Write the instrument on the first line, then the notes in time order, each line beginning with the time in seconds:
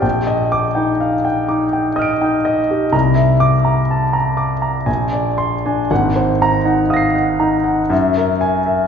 grand piano
0.02 A#1 G5
0.27 D#5
0.52 D6
0.75 D#4 G5
1.00 F5
1.25 G5
1.49 D#4 D6
1.73 G5
1.96 D#5 D#6 F6
2.02 D7
2.21 D#4 G5
2.45 D#5
2.71 G4
2.92 C2 A#5
3.15 E5
3.40 D6
3.65 A#5
3.91 A5
4.13 A#5
4.37 D6
4.62 A#5
4.86 A#1 G#5
5.13 D5
5.38 C6
5.66 D4 G#5
5.91 G#1 F#5
6.16 C5
6.42 A#5
6.65 D#4 F#5
6.90 F5 D#6 A#6
6.97 C7
7.15 F#5
7.40 D#4 A#5
7.64 F#5
7.90 F#2 E5
8.17 A#4
8.41 G#5
8.66 E5